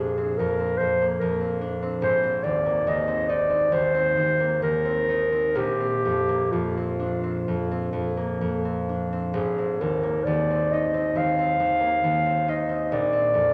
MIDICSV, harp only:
0, 0, Header, 1, 2, 480
1, 0, Start_track
1, 0, Tempo, 832178
1, 1164, Time_signature, 4, 2, 24, 8
1, 1164, Tempo, 852273
1, 2124, Tempo, 891530
1, 2604, Tempo, 947867
1, 5004, Tempo, 906344
1, 5964, Tempo, 870827
1, 7270, End_track
2, 0, Start_track
2, 0, Title_t, "Harp"
2, 0, Program_c, 0, 46
2, 0, Note_on_c, 0, 34, 38
2, 0, Note_on_c, 0, 41, 29
2, 0, Note_on_c, 0, 58, 28
2, 0, Note_on_c, 0, 60, 30
2, 0, Note_on_c, 0, 62, 33
2, 94, Note_off_c, 0, 60, 0
2, 101, Note_on_c, 0, 60, 28
2, 219, Note_off_c, 0, 41, 0
2, 225, Note_on_c, 0, 41, 29
2, 336, Note_off_c, 0, 60, 0
2, 343, Note_on_c, 0, 60, 32
2, 456, Note_off_c, 0, 41, 0
2, 463, Note_on_c, 0, 41, 32
2, 580, Note_off_c, 0, 58, 0
2, 586, Note_on_c, 0, 58, 30
2, 693, Note_off_c, 0, 41, 0
2, 700, Note_on_c, 0, 41, 31
2, 802, Note_off_c, 0, 60, 0
2, 809, Note_on_c, 0, 60, 30
2, 923, Note_off_c, 0, 62, 0
2, 930, Note_on_c, 0, 62, 34
2, 1046, Note_off_c, 0, 60, 0
2, 1053, Note_on_c, 0, 60, 33
2, 1164, Note_on_c, 0, 32, 45
2, 1188, Note_off_c, 0, 62, 0
2, 1190, Note_off_c, 0, 34, 0
2, 1192, Note_off_c, 0, 41, 0
2, 1277, Note_off_c, 0, 60, 0
2, 1284, Note_on_c, 0, 60, 31
2, 1401, Note_on_c, 0, 39, 33
2, 1518, Note_off_c, 0, 58, 0
2, 1525, Note_on_c, 0, 58, 30
2, 1637, Note_off_c, 0, 39, 0
2, 1644, Note_on_c, 0, 39, 33
2, 1754, Note_off_c, 0, 60, 0
2, 1761, Note_on_c, 0, 60, 33
2, 1882, Note_on_c, 0, 63, 35
2, 1992, Note_off_c, 0, 60, 0
2, 1999, Note_on_c, 0, 60, 31
2, 2115, Note_off_c, 0, 39, 0
2, 2122, Note_on_c, 0, 39, 33
2, 2237, Note_off_c, 0, 60, 0
2, 2244, Note_on_c, 0, 60, 35
2, 2359, Note_off_c, 0, 39, 0
2, 2366, Note_on_c, 0, 39, 31
2, 2483, Note_off_c, 0, 58, 0
2, 2489, Note_on_c, 0, 58, 29
2, 2602, Note_off_c, 0, 39, 0
2, 2608, Note_on_c, 0, 39, 32
2, 2718, Note_off_c, 0, 60, 0
2, 2724, Note_on_c, 0, 60, 31
2, 2838, Note_off_c, 0, 63, 0
2, 2844, Note_on_c, 0, 63, 32
2, 2956, Note_off_c, 0, 60, 0
2, 2962, Note_on_c, 0, 60, 32
2, 3079, Note_on_c, 0, 34, 40
2, 3097, Note_off_c, 0, 32, 0
2, 3099, Note_off_c, 0, 39, 0
2, 3100, Note_off_c, 0, 63, 0
2, 3201, Note_off_c, 0, 60, 0
2, 3207, Note_on_c, 0, 60, 28
2, 3332, Note_on_c, 0, 41, 27
2, 3445, Note_off_c, 0, 58, 0
2, 3451, Note_on_c, 0, 58, 29
2, 3566, Note_off_c, 0, 41, 0
2, 3572, Note_on_c, 0, 41, 27
2, 3691, Note_off_c, 0, 60, 0
2, 3697, Note_on_c, 0, 60, 28
2, 3810, Note_on_c, 0, 62, 32
2, 3925, Note_off_c, 0, 60, 0
2, 3931, Note_on_c, 0, 60, 27
2, 4049, Note_off_c, 0, 41, 0
2, 4055, Note_on_c, 0, 41, 28
2, 4167, Note_off_c, 0, 60, 0
2, 4174, Note_on_c, 0, 60, 30
2, 4276, Note_off_c, 0, 41, 0
2, 4282, Note_on_c, 0, 41, 28
2, 4399, Note_off_c, 0, 58, 0
2, 4405, Note_on_c, 0, 58, 28
2, 4521, Note_off_c, 0, 41, 0
2, 4527, Note_on_c, 0, 41, 29
2, 4642, Note_off_c, 0, 60, 0
2, 4648, Note_on_c, 0, 60, 28
2, 4763, Note_off_c, 0, 62, 0
2, 4770, Note_on_c, 0, 62, 28
2, 4882, Note_off_c, 0, 60, 0
2, 4889, Note_on_c, 0, 60, 30
2, 4995, Note_on_c, 0, 32, 39
2, 5022, Note_off_c, 0, 41, 0
2, 5023, Note_off_c, 0, 34, 0
2, 5023, Note_off_c, 0, 62, 0
2, 5119, Note_off_c, 0, 60, 0
2, 5125, Note_on_c, 0, 60, 27
2, 5245, Note_on_c, 0, 39, 28
2, 5357, Note_off_c, 0, 58, 0
2, 5364, Note_on_c, 0, 58, 28
2, 5482, Note_off_c, 0, 39, 0
2, 5488, Note_on_c, 0, 39, 29
2, 5607, Note_off_c, 0, 60, 0
2, 5613, Note_on_c, 0, 60, 29
2, 5735, Note_on_c, 0, 63, 32
2, 5838, Note_off_c, 0, 60, 0
2, 5844, Note_on_c, 0, 60, 30
2, 5952, Note_off_c, 0, 39, 0
2, 5958, Note_on_c, 0, 39, 29
2, 6078, Note_off_c, 0, 60, 0
2, 6084, Note_on_c, 0, 60, 32
2, 6196, Note_off_c, 0, 39, 0
2, 6203, Note_on_c, 0, 39, 30
2, 6308, Note_off_c, 0, 58, 0
2, 6315, Note_on_c, 0, 58, 27
2, 6438, Note_off_c, 0, 39, 0
2, 6445, Note_on_c, 0, 39, 31
2, 6559, Note_off_c, 0, 60, 0
2, 6565, Note_on_c, 0, 60, 32
2, 6681, Note_off_c, 0, 63, 0
2, 6688, Note_on_c, 0, 63, 34
2, 6798, Note_off_c, 0, 60, 0
2, 6805, Note_on_c, 0, 60, 34
2, 6930, Note_on_c, 0, 34, 45
2, 6941, Note_off_c, 0, 32, 0
2, 6945, Note_off_c, 0, 39, 0
2, 6946, Note_off_c, 0, 63, 0
2, 7039, Note_off_c, 0, 60, 0
2, 7046, Note_on_c, 0, 60, 32
2, 7163, Note_on_c, 0, 41, 33
2, 7270, Note_off_c, 0, 34, 0
2, 7270, Note_off_c, 0, 41, 0
2, 7270, Note_off_c, 0, 58, 0
2, 7270, Note_off_c, 0, 60, 0
2, 7270, End_track
0, 0, End_of_file